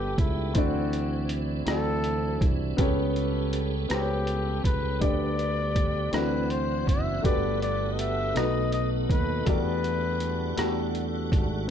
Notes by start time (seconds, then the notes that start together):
Already playing: G1 G2 G3 B3 F#4 G4 A4 D5 F#5 G5
0.18 C#2 E4, kick, closed hi-hat
0.54 D2 D3 E3 C4 D4 E4 F#4 D5, kick, closed hi-hat
0.93 closed hi-hat
1.29 closed hi-hat
1.66 D2 C4 E4 F#4 A4 D5, cross-stick, closed hi-hat
2.04 closed hi-hat
2.41 C2, kick, closed hi-hat
2.77 C#2 C#3 G3 B3 C#4 G4 A4 C#5, kick, closed hi-hat
3.16 closed hi-hat
3.53 closed hi-hat
3.89 C#2 B3 G4 A4, cross-stick, closed hi-hat
3.93 C5
3.99 C#5
4.27 closed hi-hat
4.64 C#2 B4, kick, closed hi-hat
5.00 D2 D3 B3 D4 G4 D5, kick, closed hi-hat
5.39 closed hi-hat
5.76 kick, closed hi-hat
6.11 D2 D3 E3 C4 D4 E4 F#4 B4 D5 F#5, cross-stick, closed hi-hat
6.50 C5, closed hi-hat
6.87 F#1 E5, kick, closed hi-hat
7.22 G1 G2 G3 A3 B3 F#4 G4 A4 B4 D5, kick, closed hi-hat
7.62 D5, closed hi-hat
7.93 D#5
7.99 E5, closed hi-hat
8.34 B1 B2 F#3 A3 D#4 F#4 B4 D#5, cross-stick, closed hi-hat
8.72 D#5, closed hi-hat
9.09 D#2 B4, kick, closed hi-hat
9.45 E2 E3 G3 A3 D4 F#4 G4 B4 D5 F#5, kick, closed hi-hat
9.84 closed hi-hat
10.20 closed hi-hat
10.56 E2 A3 F#4 G4 A4, cross-stick, closed hi-hat
10.95 closed hi-hat
11.32 G#1, kick, closed hi-hat